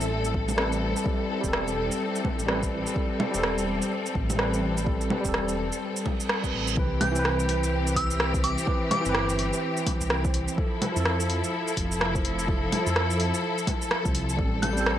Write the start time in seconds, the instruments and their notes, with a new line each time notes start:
Already playing: detuned saw bass A1, tine electric piano G3 C4 A4, string section G3 C4 A4, synth texture E4 E5
0.01 shaker
0.25 shaker
0.34 kick
0.49 low bongo, shaker
0.56 tine electric piano G3 C4 B4, cross-stick
0.72 shaker
0.96 shaker
1.04 tine electric piano G3 C4 A4, kick
1.41 detuned saw bass E1, tine electric piano G3 C4, kick, shaker
1.48 tine electric piano A4
1.53 cross-stick
1.68 shaker
1.92 shaker
2.15 shaker
2.25 kick, low bongo
2.39 detuned saw bass A1, shaker
2.47 tine electric piano G3 C4, cross-stick
2.51 tine electric piano B4
2.63 kick, shaker
2.87 shaker
2.94 tine electric piano G3 C4, kick
2.98 tine electric piano A4
3.20 low bongo
3.31 detuned saw bass E1, tine electric piano G3 C4, shaker
3.38 tine electric piano A4
3.44 cross-stick
3.58 shaker
3.82 shaker
4.06 shaker
4.15 detuned saw bass A1, kick
4.30 low bongo, shaker
4.37 tine electric piano G3 C4, cross-stick
4.41 tine electric piano B4
4.54 shaker
4.78 shaker
4.84 tine electric piano G3 C4, kick
4.88 tine electric piano A4
5.01 shaker
5.10 low bongo
5.21 detuned saw bass E1, tine electric piano G3 C4, shaker
5.25 tine electric piano A4, kick
5.34 cross-stick
5.48 shaker
5.72 shaker
5.82 reverse cymbal
5.96 shaker
6.06 kick, low bongo
6.20 shaker
6.29 cross-stick
6.42 tine electric piano G3 C4 B4, kick, shaker
6.53 detuned saw bass A1
6.67 shaker
6.75 detuned saw bass C2, tine electric piano E3 C4 B4, string section E3 C4 G4, kick
7.01 synth bell G6, open hi-hat, low bongo
7.11 tine electric piano E3 C4
7.16 tine electric piano B4, shaker
7.25 cross-stick
7.40 shaker
7.49 open hi-hat
7.63 shaker
7.87 shaker
7.96 synth bell E6, kick, open hi-hat
8.11 shaker
8.20 cross-stick
8.33 tine electric piano E3 C4 C5, kick, shaker
8.44 synth bell D6, open hi-hat
8.58 shaker
8.65 tine electric piano E3 C4 B4, kick
8.91 synth bell D6, open hi-hat, low bongo
9.01 tine electric piano E3
9.05 detuned saw bass G1, tine electric piano C4 B4, shaker
9.15 cross-stick
9.29 shaker
9.39 open hi-hat
9.53 shaker
9.77 shaker
9.87 kick, open hi-hat, low bongo
10.01 detuned saw bass C2, shaker
10.10 cross-stick
10.23 tine electric piano E3 C4, kick, shaker
10.27 tine electric piano C5
10.34 open hi-hat
10.48 shaker
10.56 tine electric piano F3 E4, string section F3 E4 A4, kick
10.60 tine electric piano A4
10.82 open hi-hat, low bongo
10.92 tine electric piano F3 E4
10.96 detuned saw bass F2, tine electric piano A4, shaker
11.05 cross-stick
11.20 shaker
11.30 open hi-hat
11.44 shaker
11.68 shaker
11.77 detuned saw bass F1, kick, open hi-hat
11.92 shaker
12.01 cross-stick
12.13 tine electric piano F3 E4 C5, kick, shaker
12.25 open hi-hat
12.39 shaker
12.46 tine electric piano F3 E4, kick
12.50 tine electric piano A4
12.72 open hi-hat, low bongo
12.82 tine electric piano F3 E4
12.87 detuned saw bass F2, tine electric piano A4, shaker
12.96 cross-stick
13.10 shaker
13.20 open hi-hat
13.34 shaker
13.58 shaker
13.67 kick, open hi-hat, low bongo
13.82 shaker
13.91 cross-stick
14.03 detuned saw bass C2, tine electric piano F3 E4, kick, shaker
14.07 tine electric piano C5
14.15 open hi-hat
14.29 shaker
14.37 detuned saw bass A1, tine electric piano G3 C4 A4, string section G3 C4, kick
14.62 synth bell G6, open hi-hat, low bongo
14.73 tine electric piano G3 C4
14.77 tine electric piano A4, shaker
14.86 cross-stick